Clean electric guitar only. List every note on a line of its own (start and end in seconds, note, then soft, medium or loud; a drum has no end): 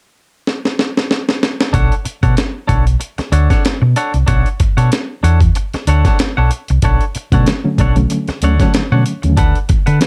1.73 1.93 D4 medium
1.73 1.94 A4 medium
1.73 1.94 C#5 medium
1.73 1.94 F#5 medium
2.05 muted clean electric guitar stroke soft
2.23 2.35 D4 soft
2.23 2.35 A4 soft
2.23 2.35 C#5 medium
2.23 2.36 F#5 medium
2.36 muted clean electric guitar stroke soft
2.67 2.84 D4 medium
2.67 2.85 A4 medium
2.67 2.85 C#5 medium
2.67 2.85 F#5 medium
2.86 muted clean electric guitar stroke soft
3.00 muted clean electric guitar stroke soft
3.18 muted clean electric guitar stroke soft
3.32 3.48 D4 medium
3.32 3.49 A4 medium
3.32 3.49 C#5 medium
3.32 3.49 F#5 medium
3.50 3.64 D4 medium
3.50 3.63 A4 medium
3.50 3.63 C#5 medium
3.50 3.63 F#5 medium
3.82 muted clean electric guitar stroke soft
3.96 4.16 D4 medium
3.96 4.13 A4 medium
3.96 4.13 C#5 medium
3.96 4.13 F#5 medium
4.14 muted clean electric guitar stroke soft
4.27 4.47 D4 medium
4.27 4.48 A4 medium
4.27 4.48 C#5 medium
4.27 4.48 F#5 medium
4.60 muted clean electric guitar stroke soft
4.77 4.90 D4 medium
4.77 4.91 A4 soft
4.77 4.90 C#5 medium
4.77 4.90 F#5 medium
5.23 5.39 D4 medium
5.23 5.40 A4 medium
5.23 5.40 C#5 medium
5.23 5.40 F#5 medium
5.56 muted clean electric guitar stroke soft
5.74 muted clean electric guitar stroke soft
5.88 6.04 D4 medium
5.88 6.04 A4 medium
5.88 6.04 C#5 medium
5.88 6.05 F#5 medium
6.06 6.18 D4 medium
6.06 6.19 A4 soft
6.06 6.18 C#5 soft
6.06 6.18 F#5 medium
6.37 6.51 D4 medium
6.37 6.51 A4 medium
6.37 6.51 C#5 medium
6.37 6.52 F#5 medium
6.52 muted clean electric guitar stroke soft
6.70 muted clean electric guitar stroke soft
6.84 7.03 D4 medium
6.84 7.04 A4 medium
6.84 7.04 C#5 medium
6.84 7.04 F#5 medium
7.16 muted clean electric guitar stroke soft
7.33 7.47 D4 medium
7.33 7.46 A4 medium
7.33 7.46 C#5 medium
7.33 7.46 F#5 medium
7.80 7.95 D4 medium
7.80 7.96 A4 medium
7.80 7.96 C#5 medium
7.80 7.96 F#5 medium
7.97 muted clean electric guitar stroke soft
8.11 muted clean electric guitar stroke soft
8.29 muted clean electric guitar stroke soft
8.44 8.59 D4 medium
8.44 8.59 A4 medium
8.44 8.59 C#5 medium
8.44 8.59 F#5 medium
8.60 8.73 D4 soft
8.60 8.73 A4 soft
8.60 8.73 C#5 medium
8.60 8.73 F#5 medium
8.92 9.04 D4 medium
8.92 9.04 A4 medium
8.92 9.05 C#5 medium
8.92 9.05 F#5 medium
9.05 muted clean electric guitar stroke soft
9.22 muted clean electric guitar stroke soft
9.37 9.57 D4 medium
9.37 9.58 A4 medium
9.37 9.58 B4 medium
9.37 9.58 F#5 medium
9.69 muted clean electric guitar stroke soft
9.86 9.99 D4 soft
9.86 10.00 A4 soft
9.86 10.00 B4 medium
9.86 9.99 F#5 medium